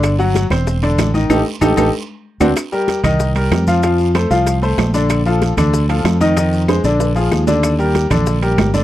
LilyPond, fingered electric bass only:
\new Staff \with { instrumentName = "Fingered electric bass" } { \clef bass \time 4/4 \key c \dorian \tempo 4 = 190 g,,4. e,,4. a,,4 | a,,8 r8 a,,8 a,,8 r4. d,8 | r4. c,4. f,4~ | f,4. c,4. bes,,4~ |
bes,,4. d,4. f,4~ | f,4. bes,,4. ees,4~ | ees,4. bes,,4. g,,4 | }